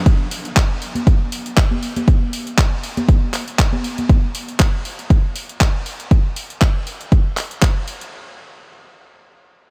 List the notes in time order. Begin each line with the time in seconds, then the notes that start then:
0.06 kick, closed hi-hat
0.31 open hi-hat
0.45 closed hi-hat
0.56 kick, clap, closed hi-hat
0.82 open hi-hat
0.95 closed hi-hat, high conga
1.07 kick, closed hi-hat
1.32 open hi-hat
1.46 closed hi-hat
1.57 kick, clap, closed hi-hat
1.71 high conga
1.83 open hi-hat
1.96 closed hi-hat, high conga
2.08 kick, closed hi-hat
2.33 open hi-hat
2.47 closed hi-hat
2.58 kick, clap, closed hi-hat
2.83 open hi-hat
2.97 closed hi-hat, high conga
3.09 kick, closed hi-hat
3.34 clap, open hi-hat
3.48 closed hi-hat
3.59 kick, clap
3.73 high conga
3.84 open hi-hat
3.98 closed hi-hat, high conga
4.09 kick, closed hi-hat
4.35 open hi-hat
4.48 closed hi-hat
4.60 kick, clap, closed hi-hat
4.85 open hi-hat
4.99 closed hi-hat
5.10 kick, closed hi-hat
5.36 open hi-hat
5.49 closed hi-hat
5.61 kick, clap, closed hi-hat
5.86 open hi-hat
6.00 closed hi-hat
6.11 kick, closed hi-hat
6.36 open hi-hat
6.50 closed hi-hat
6.61 kick, clap, closed hi-hat
6.87 open hi-hat
7.01 closed hi-hat
7.12 kick, closed hi-hat
7.37 clap, open hi-hat
7.51 closed hi-hat
7.62 kick, clap, closed hi-hat
7.88 open hi-hat
8.01 closed hi-hat